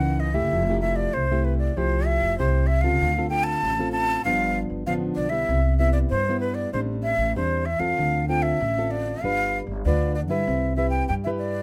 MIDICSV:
0, 0, Header, 1, 4, 480
1, 0, Start_track
1, 0, Key_signature, 0, "major"
1, 0, Tempo, 621762
1, 404, Time_signature, 4, 2, 24, 8
1, 8975, End_track
2, 0, Start_track
2, 0, Title_t, "Flute"
2, 0, Program_c, 0, 73
2, 0, Note_on_c, 0, 78, 96
2, 153, Note_on_c, 0, 75, 95
2, 164, Note_off_c, 0, 78, 0
2, 262, Note_on_c, 0, 76, 97
2, 274, Note_off_c, 0, 75, 0
2, 619, Note_off_c, 0, 76, 0
2, 624, Note_on_c, 0, 76, 95
2, 739, Note_on_c, 0, 74, 87
2, 751, Note_off_c, 0, 76, 0
2, 877, Note_on_c, 0, 72, 89
2, 888, Note_off_c, 0, 74, 0
2, 1115, Note_on_c, 0, 71, 85
2, 1127, Note_off_c, 0, 72, 0
2, 1217, Note_off_c, 0, 71, 0
2, 1221, Note_on_c, 0, 74, 85
2, 1367, Note_on_c, 0, 72, 90
2, 1378, Note_off_c, 0, 74, 0
2, 1589, Note_on_c, 0, 76, 90
2, 1601, Note_off_c, 0, 72, 0
2, 1836, Note_off_c, 0, 76, 0
2, 1840, Note_on_c, 0, 72, 88
2, 2059, Note_on_c, 0, 76, 95
2, 2071, Note_off_c, 0, 72, 0
2, 2171, Note_on_c, 0, 77, 100
2, 2183, Note_off_c, 0, 76, 0
2, 2539, Note_off_c, 0, 77, 0
2, 2543, Note_on_c, 0, 79, 97
2, 2653, Note_on_c, 0, 81, 111
2, 2665, Note_off_c, 0, 79, 0
2, 3022, Note_off_c, 0, 81, 0
2, 3026, Note_on_c, 0, 81, 103
2, 3257, Note_off_c, 0, 81, 0
2, 3279, Note_on_c, 0, 77, 97
2, 3532, Note_off_c, 0, 77, 0
2, 3756, Note_on_c, 0, 77, 95
2, 3811, Note_off_c, 0, 77, 0
2, 3979, Note_on_c, 0, 74, 92
2, 4087, Note_on_c, 0, 76, 90
2, 4099, Note_off_c, 0, 74, 0
2, 4455, Note_off_c, 0, 76, 0
2, 4459, Note_on_c, 0, 76, 93
2, 4569, Note_off_c, 0, 76, 0
2, 4573, Note_on_c, 0, 74, 89
2, 4620, Note_off_c, 0, 74, 0
2, 4707, Note_on_c, 0, 72, 89
2, 4935, Note_off_c, 0, 72, 0
2, 4939, Note_on_c, 0, 71, 90
2, 5052, Note_on_c, 0, 74, 88
2, 5064, Note_off_c, 0, 71, 0
2, 5188, Note_off_c, 0, 74, 0
2, 5194, Note_on_c, 0, 72, 94
2, 5249, Note_off_c, 0, 72, 0
2, 5425, Note_on_c, 0, 76, 87
2, 5657, Note_off_c, 0, 76, 0
2, 5683, Note_on_c, 0, 72, 81
2, 5910, Note_on_c, 0, 76, 93
2, 5921, Note_off_c, 0, 72, 0
2, 6018, Note_on_c, 0, 77, 97
2, 6030, Note_off_c, 0, 76, 0
2, 6391, Note_off_c, 0, 77, 0
2, 6398, Note_on_c, 0, 79, 92
2, 6502, Note_on_c, 0, 76, 92
2, 6514, Note_off_c, 0, 79, 0
2, 6876, Note_on_c, 0, 74, 88
2, 6887, Note_off_c, 0, 76, 0
2, 7122, Note_on_c, 0, 77, 97
2, 7134, Note_off_c, 0, 74, 0
2, 7394, Note_off_c, 0, 77, 0
2, 7609, Note_on_c, 0, 74, 90
2, 7830, Note_off_c, 0, 74, 0
2, 7834, Note_on_c, 0, 74, 92
2, 7880, Note_off_c, 0, 74, 0
2, 7942, Note_on_c, 0, 76, 91
2, 8288, Note_off_c, 0, 76, 0
2, 8308, Note_on_c, 0, 76, 87
2, 8410, Note_off_c, 0, 76, 0
2, 8414, Note_on_c, 0, 79, 85
2, 8540, Note_off_c, 0, 79, 0
2, 8554, Note_on_c, 0, 79, 86
2, 8601, Note_off_c, 0, 79, 0
2, 8676, Note_on_c, 0, 76, 81
2, 8723, Note_off_c, 0, 76, 0
2, 8787, Note_on_c, 0, 74, 84
2, 8975, Note_off_c, 0, 74, 0
2, 8975, End_track
3, 0, Start_track
3, 0, Title_t, "Nylon-string guitar"
3, 0, Program_c, 1, 24
3, 0, Note_on_c, 1, 49, 59
3, 0, Note_on_c, 1, 52, 54
3, 0, Note_on_c, 1, 58, 54
3, 0, Note_on_c, 1, 63, 64
3, 248, Note_off_c, 1, 52, 0
3, 250, Note_off_c, 1, 58, 0
3, 252, Note_off_c, 1, 63, 0
3, 263, Note_on_c, 1, 57, 62
3, 267, Note_on_c, 1, 64, 63
3, 269, Note_on_c, 1, 67, 71
3, 383, Note_off_c, 1, 49, 0
3, 409, Note_on_c, 1, 53, 58
3, 475, Note_off_c, 1, 57, 0
3, 477, Note_off_c, 1, 64, 0
3, 477, Note_off_c, 1, 67, 0
3, 535, Note_on_c, 1, 57, 64
3, 541, Note_on_c, 1, 64, 60
3, 544, Note_on_c, 1, 67, 72
3, 611, Note_off_c, 1, 57, 0
3, 613, Note_off_c, 1, 64, 0
3, 615, Note_off_c, 1, 67, 0
3, 643, Note_on_c, 1, 57, 57
3, 648, Note_on_c, 1, 64, 54
3, 653, Note_on_c, 1, 67, 54
3, 862, Note_off_c, 1, 53, 0
3, 889, Note_on_c, 1, 48, 58
3, 965, Note_off_c, 1, 57, 0
3, 968, Note_off_c, 1, 64, 0
3, 968, Note_off_c, 1, 67, 0
3, 1014, Note_on_c, 1, 57, 57
3, 1018, Note_on_c, 1, 64, 60
3, 1020, Note_on_c, 1, 67, 63
3, 1330, Note_off_c, 1, 57, 0
3, 1332, Note_off_c, 1, 67, 0
3, 1333, Note_off_c, 1, 64, 0
3, 1342, Note_off_c, 1, 48, 0
3, 1364, Note_on_c, 1, 57, 51
3, 1366, Note_on_c, 1, 53, 56
3, 1366, Note_on_c, 1, 64, 58
3, 1374, Note_on_c, 1, 67, 58
3, 1805, Note_off_c, 1, 57, 0
3, 1807, Note_off_c, 1, 64, 0
3, 1808, Note_off_c, 1, 67, 0
3, 1820, Note_off_c, 1, 53, 0
3, 1845, Note_on_c, 1, 48, 57
3, 1848, Note_on_c, 1, 57, 52
3, 1852, Note_on_c, 1, 67, 66
3, 1854, Note_on_c, 1, 64, 61
3, 2069, Note_off_c, 1, 57, 0
3, 2071, Note_off_c, 1, 64, 0
3, 2073, Note_off_c, 1, 67, 0
3, 2190, Note_on_c, 1, 60, 64
3, 2194, Note_on_c, 1, 65, 63
3, 2196, Note_on_c, 1, 69, 66
3, 2300, Note_off_c, 1, 48, 0
3, 2330, Note_on_c, 1, 50, 54
3, 2398, Note_off_c, 1, 60, 0
3, 2399, Note_off_c, 1, 65, 0
3, 2401, Note_off_c, 1, 69, 0
3, 2453, Note_on_c, 1, 60, 63
3, 2458, Note_on_c, 1, 69, 73
3, 2459, Note_on_c, 1, 65, 66
3, 2530, Note_off_c, 1, 60, 0
3, 2531, Note_off_c, 1, 65, 0
3, 2532, Note_off_c, 1, 69, 0
3, 2551, Note_on_c, 1, 60, 49
3, 2555, Note_on_c, 1, 65, 52
3, 2557, Note_on_c, 1, 69, 54
3, 2782, Note_off_c, 1, 50, 0
3, 2799, Note_on_c, 1, 45, 52
3, 2879, Note_off_c, 1, 60, 0
3, 2880, Note_off_c, 1, 65, 0
3, 2882, Note_off_c, 1, 69, 0
3, 2928, Note_on_c, 1, 60, 63
3, 2933, Note_on_c, 1, 65, 58
3, 2938, Note_on_c, 1, 69, 66
3, 3247, Note_off_c, 1, 60, 0
3, 3250, Note_off_c, 1, 65, 0
3, 3252, Note_off_c, 1, 69, 0
3, 3257, Note_off_c, 1, 45, 0
3, 3284, Note_on_c, 1, 53, 53
3, 3286, Note_on_c, 1, 43, 56
3, 3291, Note_on_c, 1, 59, 53
3, 3291, Note_on_c, 1, 62, 59
3, 3725, Note_off_c, 1, 53, 0
3, 3727, Note_off_c, 1, 59, 0
3, 3728, Note_off_c, 1, 62, 0
3, 3741, Note_off_c, 1, 43, 0
3, 3762, Note_on_c, 1, 50, 54
3, 3763, Note_on_c, 1, 53, 55
3, 3765, Note_on_c, 1, 59, 57
3, 3771, Note_on_c, 1, 62, 60
3, 4084, Note_off_c, 1, 53, 0
3, 4086, Note_off_c, 1, 59, 0
3, 4088, Note_off_c, 1, 62, 0
3, 4101, Note_on_c, 1, 55, 58
3, 4105, Note_on_c, 1, 59, 57
3, 4107, Note_on_c, 1, 64, 62
3, 4219, Note_off_c, 1, 50, 0
3, 4244, Note_on_c, 1, 48, 54
3, 4314, Note_off_c, 1, 55, 0
3, 4316, Note_off_c, 1, 59, 0
3, 4316, Note_off_c, 1, 64, 0
3, 4471, Note_on_c, 1, 55, 56
3, 4474, Note_on_c, 1, 59, 55
3, 4478, Note_on_c, 1, 64, 58
3, 4700, Note_off_c, 1, 48, 0
3, 4724, Note_on_c, 1, 43, 53
3, 4798, Note_off_c, 1, 55, 0
3, 4800, Note_off_c, 1, 59, 0
3, 4802, Note_off_c, 1, 64, 0
3, 4854, Note_on_c, 1, 55, 60
3, 4858, Note_on_c, 1, 59, 57
3, 4862, Note_on_c, 1, 64, 70
3, 5170, Note_off_c, 1, 55, 0
3, 5172, Note_off_c, 1, 59, 0
3, 5174, Note_off_c, 1, 64, 0
3, 5180, Note_off_c, 1, 43, 0
3, 5202, Note_on_c, 1, 45, 55
3, 5205, Note_on_c, 1, 60, 52
3, 5206, Note_on_c, 1, 55, 58
3, 5211, Note_on_c, 1, 62, 58
3, 5513, Note_off_c, 1, 55, 0
3, 5514, Note_off_c, 1, 60, 0
3, 5515, Note_off_c, 1, 62, 0
3, 5659, Note_off_c, 1, 45, 0
3, 5682, Note_on_c, 1, 52, 55
3, 5683, Note_on_c, 1, 55, 55
3, 5685, Note_on_c, 1, 60, 53
3, 5690, Note_on_c, 1, 62, 64
3, 5908, Note_off_c, 1, 55, 0
3, 5910, Note_off_c, 1, 60, 0
3, 5911, Note_off_c, 1, 62, 0
3, 6018, Note_on_c, 1, 60, 57
3, 6022, Note_on_c, 1, 65, 56
3, 6027, Note_on_c, 1, 69, 64
3, 6139, Note_off_c, 1, 52, 0
3, 6163, Note_on_c, 1, 50, 53
3, 6353, Note_off_c, 1, 60, 0
3, 6355, Note_off_c, 1, 65, 0
3, 6356, Note_off_c, 1, 69, 0
3, 6400, Note_on_c, 1, 60, 58
3, 6402, Note_on_c, 1, 65, 58
3, 6404, Note_on_c, 1, 69, 56
3, 6620, Note_off_c, 1, 50, 0
3, 6627, Note_off_c, 1, 65, 0
3, 6628, Note_off_c, 1, 60, 0
3, 6629, Note_off_c, 1, 69, 0
3, 6651, Note_on_c, 1, 45, 54
3, 6773, Note_on_c, 1, 60, 60
3, 6777, Note_on_c, 1, 65, 58
3, 6785, Note_on_c, 1, 69, 64
3, 7090, Note_off_c, 1, 60, 0
3, 7093, Note_off_c, 1, 65, 0
3, 7095, Note_off_c, 1, 69, 0
3, 7104, Note_off_c, 1, 45, 0
3, 7133, Note_on_c, 1, 55, 56
3, 7134, Note_on_c, 1, 62, 57
3, 7137, Note_on_c, 1, 65, 48
3, 7141, Note_on_c, 1, 71, 60
3, 7438, Note_off_c, 1, 62, 0
3, 7440, Note_off_c, 1, 65, 0
3, 7442, Note_off_c, 1, 71, 0
3, 7585, Note_off_c, 1, 55, 0
3, 7613, Note_on_c, 1, 62, 57
3, 7617, Note_on_c, 1, 50, 59
3, 7620, Note_on_c, 1, 65, 58
3, 7621, Note_on_c, 1, 71, 67
3, 7834, Note_off_c, 1, 62, 0
3, 7836, Note_off_c, 1, 65, 0
3, 7838, Note_off_c, 1, 71, 0
3, 7950, Note_on_c, 1, 64, 56
3, 7953, Note_on_c, 1, 67, 61
3, 7957, Note_on_c, 1, 71, 66
3, 8067, Note_off_c, 1, 50, 0
3, 8088, Note_on_c, 1, 60, 57
3, 8280, Note_off_c, 1, 64, 0
3, 8280, Note_off_c, 1, 67, 0
3, 8283, Note_off_c, 1, 71, 0
3, 8315, Note_on_c, 1, 64, 55
3, 8319, Note_on_c, 1, 67, 51
3, 8325, Note_on_c, 1, 71, 57
3, 8543, Note_off_c, 1, 60, 0
3, 8545, Note_off_c, 1, 64, 0
3, 8548, Note_off_c, 1, 67, 0
3, 8550, Note_off_c, 1, 71, 0
3, 8567, Note_on_c, 1, 55, 55
3, 8696, Note_on_c, 1, 64, 61
3, 8701, Note_on_c, 1, 67, 62
3, 8702, Note_on_c, 1, 71, 63
3, 8975, Note_off_c, 1, 55, 0
3, 8975, Note_off_c, 1, 64, 0
3, 8975, Note_off_c, 1, 67, 0
3, 8975, Note_off_c, 1, 71, 0
3, 8975, End_track
4, 0, Start_track
4, 0, Title_t, "Upright bass"
4, 0, Program_c, 2, 32
4, 0, Note_on_c, 2, 37, 97
4, 267, Note_on_c, 2, 30, 83
4, 278, Note_off_c, 2, 37, 0
4, 376, Note_off_c, 2, 30, 0
4, 407, Note_on_c, 2, 29, 93
4, 813, Note_off_c, 2, 29, 0
4, 886, Note_on_c, 2, 36, 96
4, 1293, Note_off_c, 2, 36, 0
4, 1369, Note_on_c, 2, 36, 86
4, 1672, Note_off_c, 2, 36, 0
4, 1707, Note_on_c, 2, 29, 79
4, 1816, Note_off_c, 2, 29, 0
4, 1848, Note_on_c, 2, 36, 97
4, 2188, Note_off_c, 2, 36, 0
4, 2188, Note_on_c, 2, 37, 82
4, 2296, Note_off_c, 2, 37, 0
4, 2325, Note_on_c, 2, 38, 96
4, 2732, Note_off_c, 2, 38, 0
4, 2806, Note_on_c, 2, 33, 98
4, 3213, Note_off_c, 2, 33, 0
4, 3282, Note_on_c, 2, 31, 88
4, 3588, Note_off_c, 2, 31, 0
4, 3626, Note_on_c, 2, 31, 73
4, 3735, Note_off_c, 2, 31, 0
4, 3759, Note_on_c, 2, 33, 77
4, 3977, Note_off_c, 2, 33, 0
4, 3989, Note_on_c, 2, 35, 78
4, 4211, Note_off_c, 2, 35, 0
4, 4236, Note_on_c, 2, 36, 95
4, 4647, Note_off_c, 2, 36, 0
4, 4721, Note_on_c, 2, 43, 101
4, 5130, Note_off_c, 2, 43, 0
4, 5198, Note_on_c, 2, 33, 91
4, 5507, Note_off_c, 2, 33, 0
4, 5541, Note_on_c, 2, 33, 82
4, 5653, Note_off_c, 2, 33, 0
4, 5685, Note_on_c, 2, 40, 93
4, 5990, Note_off_c, 2, 40, 0
4, 6023, Note_on_c, 2, 40, 85
4, 6134, Note_off_c, 2, 40, 0
4, 6167, Note_on_c, 2, 38, 95
4, 6574, Note_off_c, 2, 38, 0
4, 6642, Note_on_c, 2, 33, 102
4, 7051, Note_off_c, 2, 33, 0
4, 7121, Note_on_c, 2, 31, 92
4, 7429, Note_off_c, 2, 31, 0
4, 7463, Note_on_c, 2, 31, 82
4, 7574, Note_off_c, 2, 31, 0
4, 7605, Note_on_c, 2, 38, 95
4, 7951, Note_off_c, 2, 38, 0
4, 7951, Note_on_c, 2, 43, 80
4, 8059, Note_off_c, 2, 43, 0
4, 8085, Note_on_c, 2, 36, 94
4, 8493, Note_off_c, 2, 36, 0
4, 8568, Note_on_c, 2, 43, 104
4, 8975, Note_off_c, 2, 43, 0
4, 8975, End_track
0, 0, End_of_file